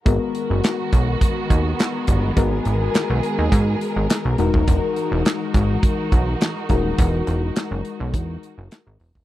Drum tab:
HH |x-x-x-x-x-x-x-x-|x-x-x-x-x-x-x-x-|x-x-x-x-x-x-x-x-|x-x-x-x-x-x-x-o-|
CP |----x-------x---|----x-------x---|----x-------x---|----x-------x---|
SD |----o-------o---|----o-------o---|----o-------o---|----o-------o---|
BD |o-----o-o-o---o-|o-------o------o|o-----o-o-o---o-|o-------o------o|